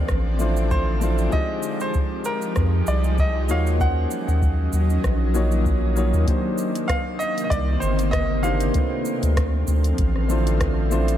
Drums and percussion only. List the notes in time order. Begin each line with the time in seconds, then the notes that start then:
0.09 kick, cross-stick, cabasa
0.39 cabasa
0.57 cabasa
0.71 kick, cabasa
1.02 cabasa
1.18 cabasa
1.32 kick, cabasa
1.63 cabasa
1.80 cabasa
1.94 kick, cabasa
2.25 cabasa
2.42 cabasa
2.56 kick, cross-stick, cabasa
2.87 cabasa
3.04 cabasa
3.18 kick, cabasa
3.49 cabasa
3.67 cabasa
3.80 kick, cabasa
4.11 cabasa
4.29 cabasa
4.42 kick, cabasa
4.73 cabasa
4.90 cabasa
5.04 kick, cross-stick, cabasa
5.35 cabasa
5.52 cabasa
5.65 kick, cabasa
5.97 cabasa
6.14 cabasa
6.27 kick, closed hi-hat, cabasa
6.58 cabasa
6.75 closed hi-hat, cabasa
6.89 kick, cross-stick, closed hi-hat, cabasa
7.20 cabasa
7.38 closed hi-hat, cabasa
7.51 kick, closed hi-hat, cabasa
7.82 cabasa
7.99 closed hi-hat, cabasa
8.13 kick, cross-stick, closed hi-hat, cabasa
8.44 cabasa
8.60 closed hi-hat, cabasa
8.74 kick, closed hi-hat, cabasa
9.05 cabasa
9.23 closed hi-hat, cabasa
9.37 kick, cross-stick, closed hi-hat, cabasa
9.68 cabasa
9.84 closed hi-hat, cabasa
9.98 kick, closed hi-hat, cabasa
10.16 cross-stick
10.30 cabasa
10.47 closed hi-hat, cabasa
10.60 kick, cross-stick, closed hi-hat, cabasa
10.92 cabasa
11.08 closed hi-hat, cabasa